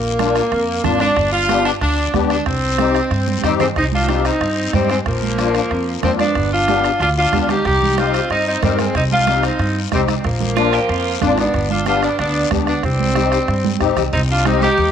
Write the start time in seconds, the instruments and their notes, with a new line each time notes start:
Already playing: upright bass A#1, saxophone section A#3
0.19 accordion A#3 D4 F4, bombo rim, high conga, short guiro
0.35 bombo rim, short guiro
0.52 upright bass F2, bombo rim, high conga, long guiro
0.84 upright bass G#1, accordion A#3 D4 F4, saxophone section D4, bombo low, bombo rim, high conga, low conga, short guiro
1.00 saxophone section D4, bombo rim, high conga, short guiro
1.16 upright bass G1, bombo low, bombo rim, long guiro
1.33 saxophone section F4
1.48 accordion B3 D4 G4, bombo rim, high conga, short guiro
1.65 saxophone section D4, bombo rim, short guiro
1.81 upright bass D2, saxophone section D4, bombo rim, high conga, long guiro
2.13 upright bass D2, accordion B3 D4 G4, bombo low, bombo rim, high conga, short guiro
2.30 saxophone section D4, bombo rim, short guiro
2.46 upright bass C2, saxophone section C4, bombo low, bombo rim, high conga, long guiro
2.78 accordion C4 D#4 G4, bombo rim, high conga, short guiro
2.94 bombo rim, short guiro
3.11 upright bass G2, bombo rim, high conga, long guiro
3.28 high conga
3.38 high conga
3.43 upright bass G2, saxophone section G3 C4, accordion C4 D#4 G4, bombo low, bombo rim, short guiro
3.49 low conga
3.60 saxophone section G#3 C4, bombo rim, low conga, short guiro
3.76 upright bass C2, saxophone section C4 D#4, bombo low, bombo rim, high conga, long guiro
3.92 saxophone section D4 F4, high conga
4.08 accordion C4 D#4 G4, bombo rim, high conga, short guiro
4.25 saxophone section C4 D#4, bombo rim, short guiro
4.41 upright bass G2, bombo rim, high conga, long guiro
4.73 upright bass G2, saxophone section G3 C4, accordion C4 D#4 G4, bombo low, bombo rim, high conga, short guiro
4.89 saxophone section G#3 C4, bombo rim, short guiro
5.06 upright bass A#1, saxophone section F3 A#3, bombo low, bombo rim, high conga, long guiro
5.22 high conga
5.38 accordion A#3 D4 F4, bombo rim, high conga, short guiro
5.55 bombo rim, short guiro
5.71 upright bass F2, bombo rim, high conga, long guiro
6.03 upright bass F2, saxophone section F3 C4, accordion A#3 D4 F4, bombo low, bombo rim, high conga, low conga, short guiro
6.19 saxophone section B3 D4, bombo rim, high conga, short guiro
6.35 upright bass G1, bombo low, bombo rim, long guiro
6.52 saxophone section D4 F4
6.68 accordion B3 D4 G4, bombo rim, high conga, short guiro
6.84 bombo rim, short guiro
7.00 upright bass D2, saxophone section D4 F4, bombo rim, high conga, long guiro
7.17 saxophone section D4 F4
7.33 upright bass D2, accordion B3 D4 G4, bombo low, bombo rim, high conga, short guiro
7.49 saxophone section D#4 G4, bombo rim, high conga, short guiro
7.65 upright bass C2, saxophone section D#4 G4, bombo low, bombo rim, long guiro
7.82 high conga, low conga
7.97 accordion C4 D#4 G4, saxophone section C4 F4, bombo rim, high conga, short guiro
8.14 bombo rim, short guiro
8.30 upright bass G2, saxophone section C4 D#4, bombo rim, high conga, long guiro
8.47 saxophone section C4 D#4
8.62 upright bass G2, saxophone section G3 C4, accordion C4 D#4 A#4, bombo low, bombo rim, high conga, low conga, short guiro
8.79 saxophone section G#3 C4, bombo rim, high conga, short guiro
8.95 upright bass C2, saxophone section C4 D#4, bombo low, bombo rim, high conga, long guiro
9.12 saxophone section D4 F4, high conga
9.27 accordion C4 D#4 G4, bombo rim, high conga, short guiro
9.43 saxophone section C4 D#4, bombo rim, short guiro
9.59 upright bass G2, bombo rim, high conga, long guiro
9.92 upright bass C2, saxophone section G3 C4, accordion C4 D#4 G4, bombo low, bombo rim, high conga, short guiro
10.08 bombo rim, high conga, short guiro
10.24 upright bass A#1, saxophone section F3 A#3, bombo low, bombo rim, high conga, long guiro
10.40 high conga, low conga
10.56 accordion A#3 D4 F4, clean electric guitar F4, bombo rim, high conga, short guiro
10.73 clean electric guitar G4, bombo rim, short guiro
10.89 upright bass F2, clean electric guitar F4, bombo rim, high conga, long guiro
11.21 upright bass G#1, accordion A#3 D4 F4, saxophone section A#3 D4, bombo low, bombo rim, high conga, low conga, short guiro
11.38 saxophone section B3 D4, bombo rim, short guiro
11.54 upright bass G1, bombo low, bombo rim, long guiro
11.70 saxophone section D4 F4, high conga
11.86 accordion B3 D4 G4, saxophone section D4 F4, bombo rim, high conga, short guiro
12.02 saxophone section B3 D4, bombo rim, short guiro
12.18 upright bass D2, saxophone section B3 D4, bombo rim, high conga, long guiro
12.50 upright bass D2, accordion B3 D4 G4, bombo low, bombo rim, high conga, short guiro
12.67 saxophone section B3 D4, bombo rim, short guiro
12.83 upright bass C2, saxophone section G3 C4, bombo low, bombo rim, high conga, long guiro
13.00 high conga
13.15 accordion C4 D#4 G4, bombo rim, high conga, short guiro
13.32 bombo rim, short guiro
13.48 upright bass G2, bombo rim, high conga, long guiro
13.64 high conga
13.80 upright bass A#1, accordion C4 D#4 G4, bombo low, bombo rim, short guiro
13.97 upright bass C2, bombo rim, low conga, short guiro
14.13 upright bass C2, saxophone section C4 D#4, bombo low, long guiro
14.30 saxophone section D4 F4
14.45 accordion C4 D#4 G4, saxophone section C4 D#4, bombo rim, high conga, short guiro
14.62 saxophone section D#4 G4, high conga, short guiro
14.78 upright bass D#2, low conga, long guiro